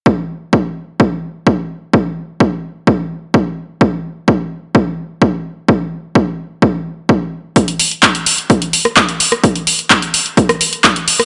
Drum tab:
HH |----------------|----------------|----------------|----------------|
CP |----------------|----------------|----------------|----------------|
SD |----------------|----------------|----------------|----------------|
BD |o---o---o---o---|o---o---o---o---|o---o---o---o---|o---o---o---o---|

HH |xxoxxxoxxxoxxxox|xxoxxxoxxxoxxxoo|
CP |----x-------x---|----x-------x---|
SD |-----------r---r|---------r-----r|
BD |o---o---o---o---|o---o---o---o---|